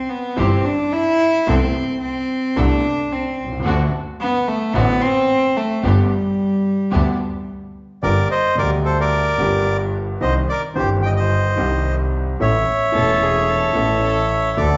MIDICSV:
0, 0, Header, 1, 6, 480
1, 0, Start_track
1, 0, Tempo, 546448
1, 1289, Time_signature, 4, 2, 24, 8
1, 12975, End_track
2, 0, Start_track
2, 0, Title_t, "Bandoneon"
2, 0, Program_c, 0, 23
2, 7052, Note_on_c, 0, 74, 98
2, 7058, Note_on_c, 0, 70, 79
2, 7274, Note_off_c, 0, 74, 0
2, 7277, Note_off_c, 0, 70, 0
2, 7299, Note_on_c, 0, 75, 108
2, 7300, Note_on_c, 0, 72, 80
2, 7518, Note_off_c, 0, 72, 0
2, 7518, Note_off_c, 0, 75, 0
2, 7539, Note_on_c, 0, 74, 88
2, 7540, Note_on_c, 0, 70, 72
2, 7645, Note_off_c, 0, 74, 0
2, 7646, Note_off_c, 0, 70, 0
2, 7774, Note_on_c, 0, 69, 68
2, 7781, Note_on_c, 0, 72, 82
2, 7883, Note_off_c, 0, 69, 0
2, 7899, Note_off_c, 0, 72, 0
2, 7907, Note_on_c, 0, 70, 73
2, 7909, Note_on_c, 0, 74, 90
2, 8582, Note_off_c, 0, 70, 0
2, 8583, Note_off_c, 0, 74, 0
2, 8974, Note_on_c, 0, 75, 94
2, 8984, Note_on_c, 0, 72, 70
2, 9081, Note_off_c, 0, 75, 0
2, 9089, Note_off_c, 0, 72, 0
2, 9215, Note_on_c, 0, 74, 89
2, 9232, Note_on_c, 0, 70, 71
2, 9322, Note_off_c, 0, 74, 0
2, 9334, Note_off_c, 0, 70, 0
2, 9443, Note_on_c, 0, 72, 92
2, 9469, Note_on_c, 0, 67, 67
2, 9552, Note_off_c, 0, 72, 0
2, 9572, Note_off_c, 0, 67, 0
2, 9684, Note_on_c, 0, 79, 100
2, 9711, Note_on_c, 0, 75, 79
2, 9739, Note_off_c, 0, 79, 0
2, 9760, Note_off_c, 0, 75, 0
2, 9803, Note_on_c, 0, 75, 94
2, 9832, Note_on_c, 0, 72, 77
2, 10489, Note_off_c, 0, 75, 0
2, 10503, Note_off_c, 0, 72, 0
2, 10901, Note_on_c, 0, 76, 109
2, 10912, Note_on_c, 0, 73, 84
2, 12783, Note_off_c, 0, 73, 0
2, 12801, Note_on_c, 0, 74, 93
2, 12823, Note_on_c, 0, 69, 73
2, 12869, Note_off_c, 0, 76, 0
2, 12975, Note_off_c, 0, 69, 0
2, 12975, Note_off_c, 0, 74, 0
2, 12975, End_track
3, 0, Start_track
3, 0, Title_t, "String section"
3, 0, Program_c, 1, 48
3, 331, Note_on_c, 1, 60, 74
3, 332, Note_on_c, 1, 64, 67
3, 336, Note_on_c, 1, 67, 88
3, 532, Note_off_c, 1, 60, 0
3, 532, Note_off_c, 1, 64, 0
3, 535, Note_off_c, 1, 67, 0
3, 1289, Note_on_c, 1, 59, 82
3, 1291, Note_on_c, 1, 60, 68
3, 1293, Note_on_c, 1, 69, 88
3, 1490, Note_off_c, 1, 59, 0
3, 1492, Note_off_c, 1, 60, 0
3, 1492, Note_off_c, 1, 69, 0
3, 2247, Note_on_c, 1, 59, 78
3, 2249, Note_on_c, 1, 60, 70
3, 2251, Note_on_c, 1, 69, 85
3, 2447, Note_off_c, 1, 59, 0
3, 2448, Note_off_c, 1, 60, 0
3, 2449, Note_off_c, 1, 69, 0
3, 3200, Note_on_c, 1, 60, 79
3, 3200, Note_on_c, 1, 66, 85
3, 3201, Note_on_c, 1, 62, 75
3, 3402, Note_off_c, 1, 60, 0
3, 3402, Note_off_c, 1, 62, 0
3, 3402, Note_off_c, 1, 66, 0
3, 4169, Note_on_c, 1, 60, 82
3, 4170, Note_on_c, 1, 62, 70
3, 4171, Note_on_c, 1, 66, 83
3, 4365, Note_off_c, 1, 60, 0
3, 4365, Note_off_c, 1, 62, 0
3, 4366, Note_off_c, 1, 66, 0
3, 5123, Note_on_c, 1, 59, 80
3, 5124, Note_on_c, 1, 62, 72
3, 5126, Note_on_c, 1, 67, 84
3, 5322, Note_off_c, 1, 59, 0
3, 5323, Note_off_c, 1, 62, 0
3, 5324, Note_off_c, 1, 67, 0
3, 6080, Note_on_c, 1, 59, 77
3, 6082, Note_on_c, 1, 62, 70
3, 6083, Note_on_c, 1, 67, 80
3, 6283, Note_off_c, 1, 59, 0
3, 6284, Note_off_c, 1, 62, 0
3, 6284, Note_off_c, 1, 67, 0
3, 12975, End_track
4, 0, Start_track
4, 0, Title_t, "Cello"
4, 0, Program_c, 2, 42
4, 0, Note_on_c, 2, 60, 85
4, 84, Note_on_c, 2, 59, 83
4, 97, Note_off_c, 2, 60, 0
4, 325, Note_on_c, 2, 60, 96
4, 338, Note_off_c, 2, 59, 0
4, 571, Note_on_c, 2, 62, 97
4, 584, Note_off_c, 2, 60, 0
4, 812, Note_on_c, 2, 64, 114
4, 825, Note_off_c, 2, 62, 0
4, 1301, Note_on_c, 2, 60, 96
4, 1314, Note_off_c, 2, 64, 0
4, 1759, Note_off_c, 2, 60, 0
4, 1764, Note_on_c, 2, 60, 94
4, 2257, Note_on_c, 2, 62, 101
4, 2270, Note_off_c, 2, 60, 0
4, 2736, Note_on_c, 2, 60, 87
4, 2750, Note_off_c, 2, 62, 0
4, 3088, Note_off_c, 2, 60, 0
4, 3695, Note_on_c, 2, 59, 104
4, 3931, Note_on_c, 2, 57, 96
4, 3944, Note_off_c, 2, 59, 0
4, 4160, Note_on_c, 2, 59, 115
4, 4173, Note_off_c, 2, 57, 0
4, 4405, Note_on_c, 2, 60, 120
4, 4418, Note_off_c, 2, 59, 0
4, 4890, Note_on_c, 2, 57, 105
4, 4903, Note_off_c, 2, 60, 0
4, 5136, Note_on_c, 2, 55, 98
4, 5149, Note_off_c, 2, 57, 0
4, 6573, Note_off_c, 2, 55, 0
4, 11364, Note_on_c, 2, 69, 104
4, 11616, Note_on_c, 2, 68, 100
4, 11629, Note_off_c, 2, 69, 0
4, 11845, Note_on_c, 2, 69, 105
4, 11859, Note_off_c, 2, 68, 0
4, 12324, Note_off_c, 2, 69, 0
4, 12333, Note_on_c, 2, 69, 89
4, 12664, Note_off_c, 2, 69, 0
4, 12975, End_track
5, 0, Start_track
5, 0, Title_t, "Grand piano"
5, 0, Program_c, 3, 0
5, 319, Note_on_c, 3, 48, 81
5, 321, Note_on_c, 3, 52, 68
5, 323, Note_on_c, 3, 31, 84
5, 323, Note_on_c, 3, 43, 93
5, 324, Note_on_c, 3, 55, 69
5, 327, Note_on_c, 3, 64, 88
5, 526, Note_off_c, 3, 48, 0
5, 527, Note_off_c, 3, 52, 0
5, 528, Note_off_c, 3, 31, 0
5, 528, Note_off_c, 3, 43, 0
5, 528, Note_off_c, 3, 55, 0
5, 530, Note_off_c, 3, 64, 0
5, 1290, Note_on_c, 3, 48, 91
5, 1292, Note_on_c, 3, 36, 88
5, 1292, Note_on_c, 3, 57, 67
5, 1292, Note_on_c, 3, 59, 73
5, 1294, Note_on_c, 3, 64, 86
5, 1491, Note_off_c, 3, 48, 0
5, 1492, Note_off_c, 3, 36, 0
5, 1492, Note_off_c, 3, 57, 0
5, 1492, Note_off_c, 3, 59, 0
5, 1493, Note_off_c, 3, 64, 0
5, 2250, Note_on_c, 3, 48, 94
5, 2251, Note_on_c, 3, 57, 71
5, 2254, Note_on_c, 3, 59, 69
5, 2255, Note_on_c, 3, 36, 94
5, 2256, Note_on_c, 3, 64, 88
5, 2449, Note_off_c, 3, 48, 0
5, 2449, Note_off_c, 3, 57, 0
5, 2451, Note_off_c, 3, 36, 0
5, 2451, Note_off_c, 3, 59, 0
5, 2452, Note_off_c, 3, 64, 0
5, 3027, Note_on_c, 3, 35, 54
5, 3084, Note_off_c, 3, 35, 0
5, 3090, Note_on_c, 3, 36, 65
5, 3146, Note_off_c, 3, 36, 0
5, 3158, Note_on_c, 3, 37, 79
5, 3208, Note_on_c, 3, 50, 95
5, 3210, Note_off_c, 3, 37, 0
5, 3213, Note_on_c, 3, 38, 94
5, 3213, Note_on_c, 3, 57, 71
5, 3214, Note_on_c, 3, 60, 72
5, 3217, Note_on_c, 3, 66, 92
5, 3407, Note_off_c, 3, 50, 0
5, 3408, Note_off_c, 3, 38, 0
5, 3408, Note_off_c, 3, 57, 0
5, 3409, Note_off_c, 3, 60, 0
5, 3410, Note_off_c, 3, 66, 0
5, 4163, Note_on_c, 3, 50, 83
5, 4167, Note_on_c, 3, 57, 72
5, 4169, Note_on_c, 3, 60, 73
5, 4170, Note_on_c, 3, 45, 92
5, 4171, Note_on_c, 3, 33, 98
5, 4174, Note_on_c, 3, 66, 89
5, 4362, Note_off_c, 3, 50, 0
5, 4364, Note_off_c, 3, 57, 0
5, 4365, Note_off_c, 3, 60, 0
5, 4366, Note_off_c, 3, 33, 0
5, 4366, Note_off_c, 3, 45, 0
5, 4368, Note_off_c, 3, 66, 0
5, 5123, Note_on_c, 3, 50, 82
5, 5128, Note_on_c, 3, 31, 90
5, 5128, Note_on_c, 3, 55, 72
5, 5130, Note_on_c, 3, 43, 94
5, 5131, Note_on_c, 3, 67, 92
5, 5132, Note_on_c, 3, 59, 72
5, 5322, Note_off_c, 3, 50, 0
5, 5325, Note_off_c, 3, 31, 0
5, 5325, Note_off_c, 3, 43, 0
5, 5325, Note_off_c, 3, 55, 0
5, 5326, Note_off_c, 3, 59, 0
5, 5326, Note_off_c, 3, 67, 0
5, 6076, Note_on_c, 3, 50, 92
5, 6078, Note_on_c, 3, 38, 91
5, 6078, Note_on_c, 3, 55, 71
5, 6079, Note_on_c, 3, 59, 72
5, 6080, Note_on_c, 3, 67, 83
5, 6282, Note_off_c, 3, 38, 0
5, 6282, Note_off_c, 3, 50, 0
5, 6282, Note_off_c, 3, 55, 0
5, 6282, Note_off_c, 3, 59, 0
5, 6283, Note_off_c, 3, 67, 0
5, 7049, Note_on_c, 3, 55, 72
5, 7050, Note_on_c, 3, 43, 85
5, 7050, Note_on_c, 3, 50, 70
5, 7051, Note_on_c, 3, 58, 71
5, 7052, Note_on_c, 3, 31, 85
5, 7054, Note_on_c, 3, 67, 81
5, 7250, Note_off_c, 3, 55, 0
5, 7251, Note_off_c, 3, 43, 0
5, 7251, Note_off_c, 3, 50, 0
5, 7251, Note_off_c, 3, 58, 0
5, 7252, Note_off_c, 3, 31, 0
5, 7253, Note_off_c, 3, 67, 0
5, 7514, Note_on_c, 3, 50, 70
5, 7527, Note_off_c, 3, 50, 0
5, 7528, Note_on_c, 3, 55, 64
5, 7534, Note_on_c, 3, 38, 83
5, 7535, Note_on_c, 3, 50, 84
5, 7542, Note_on_c, 3, 58, 66
5, 7552, Note_on_c, 3, 67, 81
5, 8213, Note_off_c, 3, 55, 0
5, 8216, Note_off_c, 3, 38, 0
5, 8216, Note_off_c, 3, 50, 0
5, 8220, Note_off_c, 3, 58, 0
5, 8225, Note_off_c, 3, 67, 0
5, 8239, Note_on_c, 3, 50, 75
5, 8251, Note_on_c, 3, 55, 72
5, 8255, Note_on_c, 3, 43, 91
5, 8256, Note_on_c, 3, 31, 89
5, 8263, Note_on_c, 3, 58, 68
5, 8272, Note_on_c, 3, 67, 78
5, 8928, Note_off_c, 3, 50, 0
5, 8933, Note_off_c, 3, 55, 0
5, 8935, Note_off_c, 3, 43, 0
5, 8936, Note_off_c, 3, 31, 0
5, 8939, Note_off_c, 3, 58, 0
5, 8944, Note_off_c, 3, 67, 0
5, 8965, Note_on_c, 3, 51, 81
5, 8966, Note_on_c, 3, 55, 72
5, 8967, Note_on_c, 3, 36, 93
5, 8968, Note_on_c, 3, 48, 86
5, 8970, Note_on_c, 3, 60, 73
5, 8971, Note_on_c, 3, 67, 82
5, 9168, Note_off_c, 3, 51, 0
5, 9169, Note_off_c, 3, 55, 0
5, 9170, Note_off_c, 3, 36, 0
5, 9170, Note_off_c, 3, 48, 0
5, 9171, Note_off_c, 3, 60, 0
5, 9172, Note_off_c, 3, 67, 0
5, 9432, Note_on_c, 3, 51, 74
5, 9444, Note_on_c, 3, 55, 66
5, 9448, Note_on_c, 3, 31, 87
5, 9449, Note_on_c, 3, 43, 85
5, 9455, Note_on_c, 3, 60, 67
5, 9465, Note_on_c, 3, 67, 80
5, 10123, Note_off_c, 3, 51, 0
5, 10129, Note_off_c, 3, 55, 0
5, 10131, Note_off_c, 3, 31, 0
5, 10131, Note_off_c, 3, 43, 0
5, 10134, Note_off_c, 3, 60, 0
5, 10139, Note_off_c, 3, 67, 0
5, 10152, Note_on_c, 3, 51, 75
5, 10161, Note_on_c, 3, 55, 70
5, 10165, Note_on_c, 3, 48, 87
5, 10166, Note_on_c, 3, 36, 94
5, 10173, Note_on_c, 3, 60, 74
5, 10186, Note_on_c, 3, 67, 89
5, 10842, Note_off_c, 3, 51, 0
5, 10846, Note_off_c, 3, 55, 0
5, 10848, Note_off_c, 3, 48, 0
5, 10849, Note_off_c, 3, 36, 0
5, 10852, Note_off_c, 3, 60, 0
5, 10859, Note_off_c, 3, 67, 0
5, 10891, Note_on_c, 3, 52, 75
5, 10893, Note_on_c, 3, 33, 92
5, 10894, Note_on_c, 3, 57, 74
5, 10894, Note_on_c, 3, 61, 71
5, 10897, Note_on_c, 3, 45, 89
5, 10897, Note_on_c, 3, 69, 84
5, 11089, Note_off_c, 3, 52, 0
5, 11090, Note_off_c, 3, 33, 0
5, 11091, Note_off_c, 3, 57, 0
5, 11091, Note_off_c, 3, 61, 0
5, 11092, Note_off_c, 3, 45, 0
5, 11092, Note_off_c, 3, 69, 0
5, 11348, Note_on_c, 3, 52, 75
5, 11361, Note_on_c, 3, 57, 67
5, 11364, Note_on_c, 3, 28, 86
5, 11366, Note_on_c, 3, 40, 84
5, 11371, Note_on_c, 3, 61, 66
5, 11384, Note_on_c, 3, 69, 85
5, 12039, Note_off_c, 3, 52, 0
5, 12045, Note_off_c, 3, 57, 0
5, 12047, Note_off_c, 3, 28, 0
5, 12048, Note_off_c, 3, 40, 0
5, 12050, Note_off_c, 3, 61, 0
5, 12056, Note_off_c, 3, 69, 0
5, 12059, Note_on_c, 3, 52, 78
5, 12069, Note_on_c, 3, 57, 71
5, 12075, Note_on_c, 3, 33, 91
5, 12076, Note_on_c, 3, 45, 93
5, 12081, Note_on_c, 3, 61, 69
5, 12091, Note_on_c, 3, 69, 84
5, 12756, Note_off_c, 3, 52, 0
5, 12761, Note_off_c, 3, 57, 0
5, 12764, Note_off_c, 3, 33, 0
5, 12765, Note_off_c, 3, 45, 0
5, 12767, Note_off_c, 3, 61, 0
5, 12772, Note_off_c, 3, 69, 0
5, 12796, Note_on_c, 3, 54, 75
5, 12797, Note_on_c, 3, 50, 94
5, 12798, Note_on_c, 3, 38, 88
5, 12801, Note_on_c, 3, 57, 69
5, 12801, Note_on_c, 3, 62, 68
5, 12802, Note_on_c, 3, 69, 81
5, 12975, Note_off_c, 3, 38, 0
5, 12975, Note_off_c, 3, 50, 0
5, 12975, Note_off_c, 3, 54, 0
5, 12975, Note_off_c, 3, 57, 0
5, 12975, Note_off_c, 3, 62, 0
5, 12975, Note_off_c, 3, 69, 0
5, 12975, End_track
6, 0, Start_track
6, 0, Title_t, "Double bass"
6, 0, Program_c, 4, 43
6, 329, Note_on_c, 4, 31, 96
6, 531, Note_off_c, 4, 31, 0
6, 1292, Note_on_c, 4, 36, 108
6, 1492, Note_off_c, 4, 36, 0
6, 2255, Note_on_c, 4, 36, 103
6, 2451, Note_off_c, 4, 36, 0
6, 2976, Note_on_c, 4, 36, 62
6, 3200, Note_off_c, 4, 36, 0
6, 3205, Note_on_c, 4, 38, 109
6, 3404, Note_off_c, 4, 38, 0
6, 4168, Note_on_c, 4, 33, 107
6, 4365, Note_off_c, 4, 33, 0
6, 5122, Note_on_c, 4, 31, 105
6, 5322, Note_off_c, 4, 31, 0
6, 6088, Note_on_c, 4, 38, 103
6, 6287, Note_off_c, 4, 38, 0
6, 7055, Note_on_c, 4, 31, 101
6, 7254, Note_off_c, 4, 31, 0
6, 7536, Note_on_c, 4, 38, 105
6, 8217, Note_off_c, 4, 38, 0
6, 8252, Note_on_c, 4, 31, 94
6, 8934, Note_off_c, 4, 31, 0
6, 8975, Note_on_c, 4, 36, 101
6, 9173, Note_off_c, 4, 36, 0
6, 9463, Note_on_c, 4, 31, 108
6, 10138, Note_off_c, 4, 31, 0
6, 10178, Note_on_c, 4, 36, 100
6, 10854, Note_off_c, 4, 36, 0
6, 10898, Note_on_c, 4, 33, 102
6, 11093, Note_off_c, 4, 33, 0
6, 11365, Note_on_c, 4, 28, 109
6, 12047, Note_off_c, 4, 28, 0
6, 12085, Note_on_c, 4, 33, 94
6, 12769, Note_off_c, 4, 33, 0
6, 12809, Note_on_c, 4, 38, 107
6, 12975, Note_off_c, 4, 38, 0
6, 12975, End_track
0, 0, End_of_file